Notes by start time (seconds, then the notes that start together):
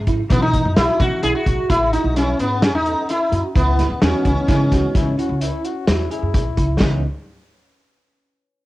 Already playing: G#2
0.07 E4, kick, closed hi-hat
0.30 B1 E3 F#3 A3 B3 C#4, kick, closed hi-hat
0.42 D#4
0.53 B2, kick, closed hi-hat
0.65 F#2
0.76 B1 E4 F#4, snare, closed hi-hat
1.00 B2 E3 F#3 A3 C#4 F#4, kick, closed hi-hat
1.23 B1 E4 G#4, closed hi-hat
1.35 F#4
1.46 B1 F#4, kick, closed hi-hat
1.70 A1 E4, kick, closed hi-hat
1.93 D#4 E4, closed hi-hat
2.04 B1
2.16 C#4 E4, snare, closed hi-hat
2.39 G#2 B3, closed hi-hat
2.62 C#4 G#4, snare, closed hi-hat
2.74 E2 D#4
2.86 A4, closed hi-hat
3.09 E4, closed hi-hat
3.32 F#2 F#4, closed hi-hat
3.55 C#2 B3 E4, kick, closed hi-hat
3.79 G#1, snare, closed hi-hat
3.90 E2
4.02 E2 E3 G#3 B3 C#4 D#4 F#4, snare, closed hi-hat
4.25 C#2 C#4, kick, closed hi-hat
4.47 C#3 E3 G#3 B3 C#4 D#4 E4, kick, snare, closed hi-hat
4.71 C#2 F#4, kick, snare, closed hi-hat
4.95 C#2 E4, kick, snare, closed hi-hat
5.18 E4 F#4, closed hi-hat
5.29 C#2
5.41 E4, closed hi-hat
5.65 F#4, closed hi-hat
5.87 E2 E4 F#4, snare, closed hi-hat
6.11 E4 G#4, closed hi-hat
6.23 F#2
6.34 B1, kick, closed hi-hat
6.57 C#2 E4, kick, closed hi-hat
6.80 C#2 E3 G#3 B3 C#4 D#4 E4, kick, snare, crash